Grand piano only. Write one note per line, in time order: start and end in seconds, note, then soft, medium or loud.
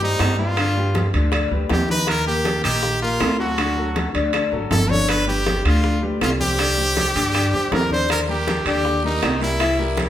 0.01 0.32 G3 medium
0.01 0.32 G4 medium
0.01 0.32 C5 medium
0.39 0.54 G3 medium
0.39 0.54 G4 medium
0.39 0.54 B4 medium
0.58 0.73 D3 medium
0.58 0.73 D4 medium
0.58 0.73 D5 medium
0.76 1.07 G3 medium
0.76 1.07 G4 medium
0.76 1.07 B4 medium
1.14 1.29 D3 medium
1.14 1.29 D4 medium
1.14 1.30 D5 medium
1.32 1.48 D3 medium
1.32 1.48 D4 medium
1.32 1.48 D5 medium
1.51 1.82 G3 medium
1.51 1.82 G4 medium
1.51 1.82 B4 medium
1.89 2.20 D#3 medium
1.89 2.20 D#4 medium
1.89 2.20 D#5 medium
2.26 2.57 A#3 medium
2.26 2.57 A#4 medium
2.64 2.95 D#3 medium
2.64 2.95 D#4 medium
2.64 2.95 D#5 medium
3.02 3.33 A#3 medium
3.02 3.33 A#4 medium
3.39 3.54 F#3 medium
3.39 3.55 F#4 medium
3.39 3.55 A4 medium
3.58 3.73 D3 medium
3.58 3.73 D4 medium
3.58 3.74 D5 medium
3.77 4.08 F#3 medium
3.77 4.08 F#4 medium
3.77 4.08 A4 medium
4.14 4.30 D3 medium
4.14 4.30 D4 medium
4.14 4.30 D5 medium
4.33 4.49 D3 medium
4.33 4.49 D4 medium
4.33 4.49 D5 medium
4.52 4.83 F#3 medium
4.52 4.83 F#4 medium
4.52 4.83 A4 medium
4.89 5.20 D3 medium
4.89 5.21 D4 medium
4.89 5.21 D5 medium
5.27 5.58 G3 medium
5.27 5.58 G4 medium
5.27 5.59 B4 medium
5.65 5.96 D3 medium
5.65 5.96 D4 medium
5.65 5.96 D5 medium
6.02 6.33 G3 medium
6.02 6.34 G4 medium
6.02 6.34 B4 medium
6.40 6.56 G3 medium
6.40 6.56 G4 medium
6.40 6.56 C5 medium
6.59 6.74 D3 medium
6.59 6.75 D4 medium
6.59 6.75 D5 medium
6.78 7.09 G3 medium
6.78 7.09 G4 medium
6.78 7.09 C5 medium
7.15 7.31 D3 medium
7.15 7.31 D4 medium
7.15 7.31 D5 medium
7.35 7.50 D3 medium
7.35 7.50 D4 medium
7.35 7.50 D5 medium
7.53 7.84 G3 medium
7.53 7.84 G4 medium
7.53 7.84 C5 medium
7.91 8.22 D3 medium
7.91 8.22 D4 medium
7.91 8.22 D5 medium
8.28 8.59 G3 medium
8.28 8.59 G4 medium
8.28 8.60 A#4 medium
8.66 8.97 D3 medium
8.66 8.97 D4 medium
8.66 8.97 D5 medium
9.04 9.34 G3 medium
9.04 9.34 G4 medium
9.04 9.35 A#4 medium
9.41 9.56 G3 medium
9.41 9.57 G4 medium
9.41 9.57 A#4 medium
9.60 9.75 E3 medium
9.60 9.76 E4 medium
9.60 9.76 E5 medium
9.79 10.09 G3 medium
9.79 10.09 G4 medium
9.79 10.09 A#4 medium